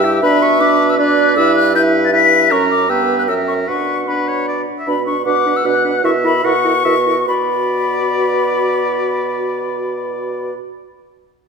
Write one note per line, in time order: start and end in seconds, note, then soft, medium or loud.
0.00 0.19 G2 loud
0.00 0.22 E4 medium
0.00 0.97 E5 loud
0.00 0.21 E6 loud
0.04 0.22 G4 medium
0.23 1.39 B2 medium
0.23 0.58 D4 loud
0.23 0.58 B4 loud
0.23 0.44 B5 loud
0.42 0.62 C#6 loud
0.60 0.98 D4 loud
0.60 0.98 B4 loud
0.60 0.91 D6 loud
0.90 0.98 E6 loud
0.99 1.37 D4 loud
0.99 1.36 B4 medium
0.99 1.77 D5 loud
0.99 1.36 F#6 loud
1.36 2.53 G2 loud
1.36 1.75 E4 loud
1.36 1.74 B4 medium
1.36 1.55 E6 loud
1.56 1.75 F#6 loud
1.75 2.13 E4 loud
1.75 2.12 B4 medium
1.75 2.12 E5 medium
1.75 1.82 G6 loud
2.05 2.13 A6 loud
2.13 2.54 E4 medium
2.13 2.53 B4 medium
2.13 2.52 E5 medium
2.13 2.53 B6 loud
2.51 2.91 F#2 medium
2.51 2.89 C#4 medium
2.51 2.89 A#4 medium
2.51 2.89 A#5 loud
2.51 2.70 C#6 loud
2.70 2.91 D6 loud
2.90 3.30 G2 medium
2.90 3.30 B3 medium
2.90 3.30 B4 medium
2.90 3.31 G5 medium
2.90 3.18 E6 loud
3.19 3.23 F#6 medium
3.28 3.68 F#2 medium
3.28 3.68 C#4 medium
3.28 3.69 A#4 medium
3.28 3.70 E5 medium
3.28 3.34 E6 loud
3.48 3.54 C#6 medium
3.68 4.66 B2 medium
3.68 4.07 D4 medium
3.68 3.97 B4 medium
3.68 4.68 F#5 medium
3.68 4.09 C#6 loud
4.08 4.67 D4 medium
4.08 4.30 B4 medium
4.08 4.68 B5 medium
4.28 4.48 C#5 medium
4.48 4.62 D5 medium
4.79 4.88 E5 medium
4.87 5.22 B2 medium
4.87 4.96 D4 medium
4.87 4.96 B4 medium
4.87 5.05 B5 loud
5.07 5.16 D4 medium
5.07 5.16 B4 medium
5.07 5.25 C#6 loud
5.26 5.60 B2 medium
5.26 5.35 D4 medium
5.26 5.35 B4 medium
5.26 6.06 F#5 medium
5.26 5.58 D6 loud
5.46 5.55 D4 medium
5.46 5.55 B4 medium
5.56 5.67 E6 loud
5.65 5.99 B2 loud
5.65 5.74 D4 medium
5.65 5.74 B4 medium
5.65 6.04 F#6 loud
5.85 5.93 D4 medium
5.85 5.93 B4 medium
6.04 6.40 B2 loud
6.04 6.13 E4 medium
6.04 6.13 A#4 medium
6.04 6.46 E5 medium
6.04 6.11 C#6 loud
6.24 6.33 E4 medium
6.24 6.33 A#4 medium
6.24 6.45 B5 loud
6.44 6.80 B2 loud
6.44 6.53 E4 medium
6.44 6.53 A#4 medium
6.44 6.84 F#5 medium
6.44 7.26 C#6 loud
6.65 6.74 E4 medium
6.65 6.74 A#4 medium
6.85 7.23 B2 loud
6.85 6.95 E4 medium
6.85 6.95 A#4 medium
6.85 6.95 E5 medium
7.06 7.16 E4 medium
7.06 7.16 A#4 medium
7.27 10.53 B2 medium
7.27 10.53 F#4 medium
7.27 10.53 B4 medium
7.27 10.53 D5 medium
7.27 10.54 B5 loud